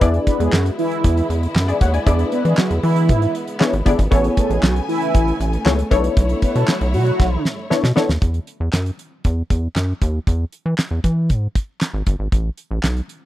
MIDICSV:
0, 0, Header, 1, 6, 480
1, 0, Start_track
1, 0, Tempo, 512821
1, 14, Time_signature, 4, 2, 24, 8
1, 12405, End_track
2, 0, Start_track
2, 0, Title_t, "Analog polysynth"
2, 0, Program_c, 0, 90
2, 0, Note_on_c, 0, 71, 61
2, 0, Note_on_c, 0, 76, 74
2, 8, Note_on_c, 0, 59, 87
2, 11, Note_on_c, 0, 62, 84
2, 13, Note_on_c, 0, 64, 78
2, 15, Note_on_c, 0, 68, 80
2, 17, Note_on_c, 0, 74, 100
2, 122, Note_off_c, 0, 76, 0
2, 125, Note_off_c, 0, 71, 0
2, 504, Note_off_c, 0, 59, 0
2, 505, Note_off_c, 0, 62, 0
2, 506, Note_off_c, 0, 64, 0
2, 507, Note_off_c, 0, 68, 0
2, 508, Note_off_c, 0, 74, 0
2, 1574, Note_on_c, 0, 74, 74
2, 1579, Note_on_c, 0, 68, 66
2, 1688, Note_off_c, 0, 74, 0
2, 1691, Note_off_c, 0, 68, 0
2, 1696, Note_on_c, 0, 78, 76
2, 1700, Note_on_c, 0, 73, 65
2, 1809, Note_off_c, 0, 78, 0
2, 1812, Note_off_c, 0, 73, 0
2, 1812, Note_on_c, 0, 80, 79
2, 1818, Note_on_c, 0, 74, 63
2, 1927, Note_off_c, 0, 74, 0
2, 1930, Note_on_c, 0, 59, 89
2, 1932, Note_on_c, 0, 62, 73
2, 1934, Note_on_c, 0, 64, 74
2, 1936, Note_on_c, 0, 68, 75
2, 1939, Note_on_c, 0, 74, 105
2, 2041, Note_off_c, 0, 80, 0
2, 2425, Note_off_c, 0, 59, 0
2, 2426, Note_off_c, 0, 62, 0
2, 2427, Note_off_c, 0, 64, 0
2, 2428, Note_off_c, 0, 68, 0
2, 2429, Note_off_c, 0, 74, 0
2, 3370, Note_on_c, 0, 59, 84
2, 3371, Note_on_c, 0, 62, 73
2, 3373, Note_on_c, 0, 64, 78
2, 3375, Note_on_c, 0, 68, 76
2, 3375, Note_on_c, 0, 73, 95
2, 3495, Note_off_c, 0, 59, 0
2, 3496, Note_off_c, 0, 62, 0
2, 3497, Note_off_c, 0, 64, 0
2, 3498, Note_off_c, 0, 68, 0
2, 3498, Note_off_c, 0, 73, 0
2, 3608, Note_on_c, 0, 59, 91
2, 3609, Note_on_c, 0, 62, 90
2, 3612, Note_on_c, 0, 64, 90
2, 3614, Note_on_c, 0, 68, 91
2, 3616, Note_on_c, 0, 74, 99
2, 3734, Note_off_c, 0, 59, 0
2, 3735, Note_off_c, 0, 62, 0
2, 3736, Note_off_c, 0, 64, 0
2, 3737, Note_off_c, 0, 68, 0
2, 3738, Note_off_c, 0, 74, 0
2, 3845, Note_on_c, 0, 59, 89
2, 3846, Note_on_c, 0, 64, 79
2, 3848, Note_on_c, 0, 68, 84
2, 3850, Note_on_c, 0, 69, 80
2, 3851, Note_on_c, 0, 73, 99
2, 4342, Note_off_c, 0, 59, 0
2, 4343, Note_off_c, 0, 64, 0
2, 4344, Note_off_c, 0, 68, 0
2, 4345, Note_off_c, 0, 69, 0
2, 4345, Note_off_c, 0, 73, 0
2, 5289, Note_on_c, 0, 59, 85
2, 5292, Note_on_c, 0, 64, 73
2, 5293, Note_on_c, 0, 68, 81
2, 5295, Note_on_c, 0, 69, 81
2, 5296, Note_on_c, 0, 73, 88
2, 5415, Note_off_c, 0, 59, 0
2, 5416, Note_off_c, 0, 64, 0
2, 5417, Note_off_c, 0, 68, 0
2, 5418, Note_off_c, 0, 69, 0
2, 5418, Note_off_c, 0, 73, 0
2, 5530, Note_on_c, 0, 59, 104
2, 5532, Note_on_c, 0, 62, 95
2, 5534, Note_on_c, 0, 64, 90
2, 5535, Note_on_c, 0, 69, 84
2, 5538, Note_on_c, 0, 73, 120
2, 6300, Note_off_c, 0, 59, 0
2, 6301, Note_off_c, 0, 62, 0
2, 6302, Note_off_c, 0, 64, 0
2, 6303, Note_off_c, 0, 69, 0
2, 6304, Note_off_c, 0, 73, 0
2, 7210, Note_on_c, 0, 59, 85
2, 7211, Note_on_c, 0, 62, 75
2, 7213, Note_on_c, 0, 64, 75
2, 7215, Note_on_c, 0, 69, 73
2, 7217, Note_on_c, 0, 73, 98
2, 7335, Note_off_c, 0, 59, 0
2, 7336, Note_off_c, 0, 62, 0
2, 7337, Note_off_c, 0, 64, 0
2, 7338, Note_off_c, 0, 69, 0
2, 7339, Note_off_c, 0, 73, 0
2, 7448, Note_on_c, 0, 59, 97
2, 7450, Note_on_c, 0, 62, 83
2, 7451, Note_on_c, 0, 64, 82
2, 7454, Note_on_c, 0, 69, 86
2, 7457, Note_on_c, 0, 73, 107
2, 7574, Note_off_c, 0, 59, 0
2, 7576, Note_off_c, 0, 62, 0
2, 7576, Note_off_c, 0, 64, 0
2, 7577, Note_off_c, 0, 69, 0
2, 7579, Note_off_c, 0, 73, 0
2, 12405, End_track
3, 0, Start_track
3, 0, Title_t, "Analog polysynth"
3, 0, Program_c, 1, 90
3, 256, Note_on_c, 1, 59, 80
3, 257, Note_on_c, 1, 71, 96
3, 351, Note_off_c, 1, 59, 0
3, 352, Note_off_c, 1, 71, 0
3, 376, Note_on_c, 1, 56, 83
3, 376, Note_on_c, 1, 68, 91
3, 471, Note_off_c, 1, 56, 0
3, 471, Note_off_c, 1, 68, 0
3, 495, Note_on_c, 1, 54, 79
3, 496, Note_on_c, 1, 66, 88
3, 591, Note_off_c, 1, 54, 0
3, 592, Note_off_c, 1, 66, 0
3, 735, Note_on_c, 1, 52, 104
3, 735, Note_on_c, 1, 64, 106
3, 1186, Note_off_c, 1, 52, 0
3, 1186, Note_off_c, 1, 64, 0
3, 2173, Note_on_c, 1, 59, 83
3, 2173, Note_on_c, 1, 71, 86
3, 2269, Note_off_c, 1, 59, 0
3, 2270, Note_off_c, 1, 71, 0
3, 2294, Note_on_c, 1, 68, 94
3, 2295, Note_on_c, 1, 56, 83
3, 2390, Note_off_c, 1, 56, 0
3, 2390, Note_off_c, 1, 68, 0
3, 2416, Note_on_c, 1, 54, 90
3, 2416, Note_on_c, 1, 66, 93
3, 2511, Note_off_c, 1, 54, 0
3, 2511, Note_off_c, 1, 66, 0
3, 2654, Note_on_c, 1, 64, 116
3, 2655, Note_on_c, 1, 52, 95
3, 3105, Note_off_c, 1, 64, 0
3, 3106, Note_off_c, 1, 52, 0
3, 4094, Note_on_c, 1, 57, 85
3, 4095, Note_on_c, 1, 69, 91
3, 4190, Note_off_c, 1, 57, 0
3, 4191, Note_off_c, 1, 69, 0
3, 4211, Note_on_c, 1, 56, 76
3, 4211, Note_on_c, 1, 68, 89
3, 4308, Note_off_c, 1, 68, 0
3, 4309, Note_off_c, 1, 56, 0
3, 4335, Note_on_c, 1, 54, 85
3, 4336, Note_on_c, 1, 66, 94
3, 4431, Note_off_c, 1, 54, 0
3, 4431, Note_off_c, 1, 66, 0
3, 4574, Note_on_c, 1, 52, 98
3, 4574, Note_on_c, 1, 64, 117
3, 5025, Note_off_c, 1, 52, 0
3, 5025, Note_off_c, 1, 64, 0
3, 6015, Note_on_c, 1, 59, 81
3, 6015, Note_on_c, 1, 71, 88
3, 6111, Note_off_c, 1, 59, 0
3, 6111, Note_off_c, 1, 71, 0
3, 6133, Note_on_c, 1, 69, 95
3, 6134, Note_on_c, 1, 57, 87
3, 6230, Note_off_c, 1, 57, 0
3, 6230, Note_off_c, 1, 69, 0
3, 6255, Note_on_c, 1, 66, 98
3, 6256, Note_on_c, 1, 54, 88
3, 6351, Note_off_c, 1, 54, 0
3, 6351, Note_off_c, 1, 66, 0
3, 6495, Note_on_c, 1, 54, 103
3, 6495, Note_on_c, 1, 66, 114
3, 6946, Note_off_c, 1, 54, 0
3, 6946, Note_off_c, 1, 66, 0
3, 12405, End_track
4, 0, Start_track
4, 0, Title_t, "String section"
4, 0, Program_c, 2, 48
4, 10, Note_on_c, 2, 50, 71
4, 10, Note_on_c, 2, 56, 72
4, 12, Note_on_c, 2, 59, 70
4, 14, Note_on_c, 2, 64, 87
4, 3815, Note_off_c, 2, 50, 0
4, 3815, Note_off_c, 2, 56, 0
4, 3816, Note_off_c, 2, 64, 0
4, 3846, Note_on_c, 2, 80, 82
4, 3847, Note_on_c, 2, 57, 71
4, 3850, Note_on_c, 2, 49, 81
4, 5496, Note_off_c, 2, 59, 0
4, 5513, Note_off_c, 2, 80, 0
4, 5515, Note_off_c, 2, 49, 0
4, 5534, Note_on_c, 2, 50, 71
4, 5535, Note_on_c, 2, 64, 84
4, 5536, Note_on_c, 2, 73, 78
4, 7653, Note_off_c, 2, 57, 0
4, 7673, Note_off_c, 2, 50, 0
4, 7673, Note_off_c, 2, 64, 0
4, 7674, Note_off_c, 2, 73, 0
4, 12405, End_track
5, 0, Start_track
5, 0, Title_t, "Analog synth bass"
5, 0, Program_c, 3, 38
5, 13, Note_on_c, 3, 40, 101
5, 179, Note_off_c, 3, 40, 0
5, 372, Note_on_c, 3, 40, 102
5, 456, Note_off_c, 3, 40, 0
5, 492, Note_on_c, 3, 42, 86
5, 659, Note_off_c, 3, 42, 0
5, 976, Note_on_c, 3, 40, 102
5, 1141, Note_off_c, 3, 40, 0
5, 1212, Note_on_c, 3, 40, 89
5, 1379, Note_off_c, 3, 40, 0
5, 1453, Note_on_c, 3, 42, 80
5, 1619, Note_off_c, 3, 42, 0
5, 1695, Note_on_c, 3, 39, 98
5, 1861, Note_off_c, 3, 39, 0
5, 1933, Note_on_c, 3, 40, 112
5, 2100, Note_off_c, 3, 40, 0
5, 2293, Note_on_c, 3, 52, 100
5, 2376, Note_off_c, 3, 52, 0
5, 2532, Note_on_c, 3, 40, 94
5, 2616, Note_off_c, 3, 40, 0
5, 2652, Note_on_c, 3, 52, 96
5, 2895, Note_on_c, 3, 44, 99
5, 2909, Note_off_c, 3, 52, 0
5, 3061, Note_off_c, 3, 44, 0
5, 3493, Note_on_c, 3, 32, 100
5, 3576, Note_off_c, 3, 32, 0
5, 3614, Note_on_c, 3, 31, 92
5, 3697, Note_off_c, 3, 31, 0
5, 3734, Note_on_c, 3, 32, 93
5, 3817, Note_off_c, 3, 32, 0
5, 3852, Note_on_c, 3, 33, 117
5, 4019, Note_off_c, 3, 33, 0
5, 4210, Note_on_c, 3, 33, 102
5, 4295, Note_off_c, 3, 33, 0
5, 4331, Note_on_c, 3, 35, 89
5, 4498, Note_off_c, 3, 35, 0
5, 4817, Note_on_c, 3, 33, 102
5, 4982, Note_off_c, 3, 33, 0
5, 5053, Note_on_c, 3, 33, 95
5, 5220, Note_off_c, 3, 33, 0
5, 5294, Note_on_c, 3, 37, 87
5, 5460, Note_off_c, 3, 37, 0
5, 5535, Note_on_c, 3, 35, 110
5, 5701, Note_off_c, 3, 35, 0
5, 5773, Note_on_c, 3, 35, 109
5, 5940, Note_off_c, 3, 35, 0
5, 6135, Note_on_c, 3, 47, 106
5, 6218, Note_off_c, 3, 47, 0
5, 6374, Note_on_c, 3, 35, 107
5, 6494, Note_on_c, 3, 47, 89
5, 6508, Note_off_c, 3, 35, 0
5, 6660, Note_off_c, 3, 47, 0
5, 6735, Note_on_c, 3, 35, 98
5, 6901, Note_off_c, 3, 35, 0
5, 7333, Note_on_c, 3, 47, 121
5, 7416, Note_off_c, 3, 47, 0
5, 7573, Note_on_c, 3, 39, 88
5, 7657, Note_off_c, 3, 39, 0
5, 7693, Note_on_c, 3, 40, 95
5, 7859, Note_off_c, 3, 40, 0
5, 8053, Note_on_c, 3, 40, 100
5, 8136, Note_off_c, 3, 40, 0
5, 8174, Note_on_c, 3, 42, 79
5, 8340, Note_off_c, 3, 42, 0
5, 8657, Note_on_c, 3, 40, 89
5, 8822, Note_off_c, 3, 40, 0
5, 8895, Note_on_c, 3, 40, 90
5, 9061, Note_off_c, 3, 40, 0
5, 9132, Note_on_c, 3, 42, 80
5, 9299, Note_off_c, 3, 42, 0
5, 9376, Note_on_c, 3, 39, 95
5, 9541, Note_off_c, 3, 39, 0
5, 9614, Note_on_c, 3, 40, 105
5, 9780, Note_off_c, 3, 40, 0
5, 9974, Note_on_c, 3, 52, 98
5, 10057, Note_off_c, 3, 52, 0
5, 10211, Note_on_c, 3, 40, 96
5, 10295, Note_off_c, 3, 40, 0
5, 10333, Note_on_c, 3, 52, 89
5, 10576, Note_on_c, 3, 44, 99
5, 10590, Note_off_c, 3, 52, 0
5, 10741, Note_off_c, 3, 44, 0
5, 11172, Note_on_c, 3, 32, 97
5, 11256, Note_off_c, 3, 32, 0
5, 11294, Note_on_c, 3, 31, 101
5, 11377, Note_off_c, 3, 31, 0
5, 11411, Note_on_c, 3, 32, 84
5, 11495, Note_off_c, 3, 32, 0
5, 11533, Note_on_c, 3, 33, 109
5, 11700, Note_off_c, 3, 33, 0
5, 11893, Note_on_c, 3, 33, 95
5, 11976, Note_off_c, 3, 33, 0
5, 12012, Note_on_c, 3, 35, 96
5, 12178, Note_off_c, 3, 35, 0
5, 12405, End_track
6, 0, Start_track
6, 0, Title_t, "Drums"
6, 13, Note_on_c, 9, 36, 127
6, 15, Note_on_c, 9, 42, 82
6, 107, Note_off_c, 9, 36, 0
6, 109, Note_off_c, 9, 42, 0
6, 131, Note_on_c, 9, 42, 46
6, 224, Note_off_c, 9, 42, 0
6, 251, Note_on_c, 9, 42, 78
6, 253, Note_on_c, 9, 36, 101
6, 345, Note_off_c, 9, 42, 0
6, 346, Note_off_c, 9, 36, 0
6, 378, Note_on_c, 9, 42, 58
6, 471, Note_off_c, 9, 42, 0
6, 491, Note_on_c, 9, 39, 98
6, 498, Note_on_c, 9, 38, 121
6, 585, Note_off_c, 9, 39, 0
6, 592, Note_off_c, 9, 38, 0
6, 617, Note_on_c, 9, 42, 52
6, 711, Note_off_c, 9, 42, 0
6, 738, Note_on_c, 9, 46, 61
6, 831, Note_off_c, 9, 46, 0
6, 857, Note_on_c, 9, 42, 55
6, 950, Note_off_c, 9, 42, 0
6, 975, Note_on_c, 9, 42, 79
6, 977, Note_on_c, 9, 36, 96
6, 1068, Note_off_c, 9, 42, 0
6, 1071, Note_off_c, 9, 36, 0
6, 1099, Note_on_c, 9, 42, 45
6, 1192, Note_off_c, 9, 42, 0
6, 1219, Note_on_c, 9, 42, 78
6, 1312, Note_off_c, 9, 42, 0
6, 1339, Note_on_c, 9, 42, 47
6, 1433, Note_off_c, 9, 42, 0
6, 1455, Note_on_c, 9, 39, 78
6, 1462, Note_on_c, 9, 38, 114
6, 1548, Note_off_c, 9, 39, 0
6, 1556, Note_off_c, 9, 38, 0
6, 1577, Note_on_c, 9, 42, 63
6, 1671, Note_off_c, 9, 42, 0
6, 1694, Note_on_c, 9, 42, 87
6, 1695, Note_on_c, 9, 36, 104
6, 1788, Note_off_c, 9, 42, 0
6, 1789, Note_off_c, 9, 36, 0
6, 1814, Note_on_c, 9, 42, 56
6, 1908, Note_off_c, 9, 42, 0
6, 1934, Note_on_c, 9, 36, 119
6, 1935, Note_on_c, 9, 42, 80
6, 2027, Note_off_c, 9, 36, 0
6, 2029, Note_off_c, 9, 42, 0
6, 2051, Note_on_c, 9, 42, 55
6, 2144, Note_off_c, 9, 42, 0
6, 2171, Note_on_c, 9, 42, 77
6, 2265, Note_off_c, 9, 42, 0
6, 2295, Note_on_c, 9, 42, 59
6, 2388, Note_off_c, 9, 42, 0
6, 2407, Note_on_c, 9, 39, 98
6, 2415, Note_on_c, 9, 38, 118
6, 2501, Note_off_c, 9, 39, 0
6, 2508, Note_off_c, 9, 38, 0
6, 2533, Note_on_c, 9, 42, 49
6, 2626, Note_off_c, 9, 42, 0
6, 2653, Note_on_c, 9, 46, 69
6, 2746, Note_off_c, 9, 46, 0
6, 2772, Note_on_c, 9, 42, 55
6, 2866, Note_off_c, 9, 42, 0
6, 2890, Note_on_c, 9, 42, 70
6, 2895, Note_on_c, 9, 36, 92
6, 2983, Note_off_c, 9, 42, 0
6, 2989, Note_off_c, 9, 36, 0
6, 3014, Note_on_c, 9, 42, 47
6, 3108, Note_off_c, 9, 42, 0
6, 3134, Note_on_c, 9, 42, 78
6, 3228, Note_off_c, 9, 42, 0
6, 3253, Note_on_c, 9, 42, 49
6, 3346, Note_off_c, 9, 42, 0
6, 3370, Note_on_c, 9, 39, 83
6, 3377, Note_on_c, 9, 38, 117
6, 3463, Note_off_c, 9, 39, 0
6, 3471, Note_off_c, 9, 38, 0
6, 3495, Note_on_c, 9, 42, 62
6, 3588, Note_off_c, 9, 42, 0
6, 3612, Note_on_c, 9, 42, 84
6, 3614, Note_on_c, 9, 36, 109
6, 3705, Note_off_c, 9, 42, 0
6, 3708, Note_off_c, 9, 36, 0
6, 3732, Note_on_c, 9, 42, 58
6, 3735, Note_on_c, 9, 36, 94
6, 3826, Note_off_c, 9, 42, 0
6, 3828, Note_off_c, 9, 36, 0
6, 3853, Note_on_c, 9, 36, 121
6, 3854, Note_on_c, 9, 42, 87
6, 3947, Note_off_c, 9, 36, 0
6, 3948, Note_off_c, 9, 42, 0
6, 3970, Note_on_c, 9, 42, 49
6, 4064, Note_off_c, 9, 42, 0
6, 4092, Note_on_c, 9, 42, 72
6, 4093, Note_on_c, 9, 36, 93
6, 4185, Note_off_c, 9, 42, 0
6, 4187, Note_off_c, 9, 36, 0
6, 4217, Note_on_c, 9, 42, 53
6, 4310, Note_off_c, 9, 42, 0
6, 4332, Note_on_c, 9, 39, 93
6, 4339, Note_on_c, 9, 38, 122
6, 4425, Note_off_c, 9, 39, 0
6, 4433, Note_off_c, 9, 38, 0
6, 4458, Note_on_c, 9, 42, 49
6, 4551, Note_off_c, 9, 42, 0
6, 4579, Note_on_c, 9, 46, 61
6, 4673, Note_off_c, 9, 46, 0
6, 4698, Note_on_c, 9, 42, 52
6, 4792, Note_off_c, 9, 42, 0
6, 4815, Note_on_c, 9, 42, 86
6, 4818, Note_on_c, 9, 36, 104
6, 4908, Note_off_c, 9, 42, 0
6, 4911, Note_off_c, 9, 36, 0
6, 4941, Note_on_c, 9, 42, 44
6, 5034, Note_off_c, 9, 42, 0
6, 5059, Note_on_c, 9, 42, 88
6, 5153, Note_off_c, 9, 42, 0
6, 5178, Note_on_c, 9, 42, 49
6, 5272, Note_off_c, 9, 42, 0
6, 5295, Note_on_c, 9, 39, 83
6, 5302, Note_on_c, 9, 38, 114
6, 5388, Note_off_c, 9, 39, 0
6, 5396, Note_off_c, 9, 38, 0
6, 5418, Note_on_c, 9, 42, 60
6, 5511, Note_off_c, 9, 42, 0
6, 5534, Note_on_c, 9, 42, 88
6, 5535, Note_on_c, 9, 36, 97
6, 5627, Note_off_c, 9, 42, 0
6, 5629, Note_off_c, 9, 36, 0
6, 5653, Note_on_c, 9, 42, 58
6, 5747, Note_off_c, 9, 42, 0
6, 5774, Note_on_c, 9, 36, 116
6, 5775, Note_on_c, 9, 42, 82
6, 5867, Note_off_c, 9, 36, 0
6, 5869, Note_off_c, 9, 42, 0
6, 5889, Note_on_c, 9, 42, 52
6, 5983, Note_off_c, 9, 42, 0
6, 6010, Note_on_c, 9, 42, 76
6, 6012, Note_on_c, 9, 36, 87
6, 6104, Note_off_c, 9, 42, 0
6, 6106, Note_off_c, 9, 36, 0
6, 6135, Note_on_c, 9, 42, 59
6, 6229, Note_off_c, 9, 42, 0
6, 6249, Note_on_c, 9, 39, 101
6, 6256, Note_on_c, 9, 38, 123
6, 6342, Note_off_c, 9, 39, 0
6, 6350, Note_off_c, 9, 38, 0
6, 6375, Note_on_c, 9, 42, 48
6, 6469, Note_off_c, 9, 42, 0
6, 6494, Note_on_c, 9, 46, 66
6, 6588, Note_off_c, 9, 46, 0
6, 6613, Note_on_c, 9, 42, 54
6, 6706, Note_off_c, 9, 42, 0
6, 6736, Note_on_c, 9, 36, 98
6, 6738, Note_on_c, 9, 38, 53
6, 6830, Note_off_c, 9, 36, 0
6, 6831, Note_off_c, 9, 38, 0
6, 6976, Note_on_c, 9, 38, 87
6, 7069, Note_off_c, 9, 38, 0
6, 7217, Note_on_c, 9, 38, 91
6, 7311, Note_off_c, 9, 38, 0
6, 7337, Note_on_c, 9, 38, 85
6, 7431, Note_off_c, 9, 38, 0
6, 7457, Note_on_c, 9, 38, 107
6, 7551, Note_off_c, 9, 38, 0
6, 7576, Note_on_c, 9, 38, 99
6, 7669, Note_off_c, 9, 38, 0
6, 7692, Note_on_c, 9, 42, 71
6, 7693, Note_on_c, 9, 36, 110
6, 7786, Note_off_c, 9, 36, 0
6, 7786, Note_off_c, 9, 42, 0
6, 7807, Note_on_c, 9, 42, 46
6, 7901, Note_off_c, 9, 42, 0
6, 7930, Note_on_c, 9, 42, 75
6, 8024, Note_off_c, 9, 42, 0
6, 8169, Note_on_c, 9, 39, 78
6, 8176, Note_on_c, 9, 38, 98
6, 8176, Note_on_c, 9, 42, 87
6, 8262, Note_off_c, 9, 39, 0
6, 8269, Note_off_c, 9, 42, 0
6, 8270, Note_off_c, 9, 38, 0
6, 8294, Note_on_c, 9, 42, 45
6, 8387, Note_off_c, 9, 42, 0
6, 8415, Note_on_c, 9, 42, 61
6, 8509, Note_off_c, 9, 42, 0
6, 8652, Note_on_c, 9, 42, 68
6, 8656, Note_on_c, 9, 36, 91
6, 8746, Note_off_c, 9, 42, 0
6, 8750, Note_off_c, 9, 36, 0
6, 8895, Note_on_c, 9, 36, 104
6, 8896, Note_on_c, 9, 42, 75
6, 8989, Note_off_c, 9, 36, 0
6, 8990, Note_off_c, 9, 42, 0
6, 9133, Note_on_c, 9, 39, 74
6, 9137, Note_on_c, 9, 42, 82
6, 9141, Note_on_c, 9, 38, 91
6, 9227, Note_off_c, 9, 39, 0
6, 9230, Note_off_c, 9, 42, 0
6, 9234, Note_off_c, 9, 38, 0
6, 9375, Note_on_c, 9, 36, 90
6, 9375, Note_on_c, 9, 42, 78
6, 9468, Note_off_c, 9, 42, 0
6, 9469, Note_off_c, 9, 36, 0
6, 9614, Note_on_c, 9, 36, 104
6, 9615, Note_on_c, 9, 42, 73
6, 9708, Note_off_c, 9, 36, 0
6, 9709, Note_off_c, 9, 42, 0
6, 9851, Note_on_c, 9, 42, 66
6, 9945, Note_off_c, 9, 42, 0
6, 10090, Note_on_c, 9, 39, 85
6, 10097, Note_on_c, 9, 38, 118
6, 10097, Note_on_c, 9, 42, 88
6, 10183, Note_off_c, 9, 39, 0
6, 10191, Note_off_c, 9, 38, 0
6, 10191, Note_off_c, 9, 42, 0
6, 10333, Note_on_c, 9, 36, 91
6, 10335, Note_on_c, 9, 42, 63
6, 10427, Note_off_c, 9, 36, 0
6, 10429, Note_off_c, 9, 42, 0
6, 10572, Note_on_c, 9, 42, 69
6, 10576, Note_on_c, 9, 36, 83
6, 10665, Note_off_c, 9, 42, 0
6, 10670, Note_off_c, 9, 36, 0
6, 10815, Note_on_c, 9, 36, 100
6, 10816, Note_on_c, 9, 42, 79
6, 10908, Note_off_c, 9, 36, 0
6, 10910, Note_off_c, 9, 42, 0
6, 11052, Note_on_c, 9, 39, 84
6, 11056, Note_on_c, 9, 42, 83
6, 11059, Note_on_c, 9, 38, 98
6, 11146, Note_off_c, 9, 39, 0
6, 11149, Note_off_c, 9, 42, 0
6, 11153, Note_off_c, 9, 38, 0
6, 11293, Note_on_c, 9, 42, 80
6, 11295, Note_on_c, 9, 36, 92
6, 11386, Note_off_c, 9, 42, 0
6, 11388, Note_off_c, 9, 36, 0
6, 11534, Note_on_c, 9, 36, 100
6, 11535, Note_on_c, 9, 42, 68
6, 11627, Note_off_c, 9, 36, 0
6, 11629, Note_off_c, 9, 42, 0
6, 11770, Note_on_c, 9, 42, 66
6, 11864, Note_off_c, 9, 42, 0
6, 12009, Note_on_c, 9, 39, 84
6, 12017, Note_on_c, 9, 38, 106
6, 12017, Note_on_c, 9, 42, 87
6, 12103, Note_off_c, 9, 39, 0
6, 12110, Note_off_c, 9, 38, 0
6, 12110, Note_off_c, 9, 42, 0
6, 12136, Note_on_c, 9, 42, 45
6, 12229, Note_off_c, 9, 42, 0
6, 12255, Note_on_c, 9, 42, 59
6, 12349, Note_off_c, 9, 42, 0
6, 12405, End_track
0, 0, End_of_file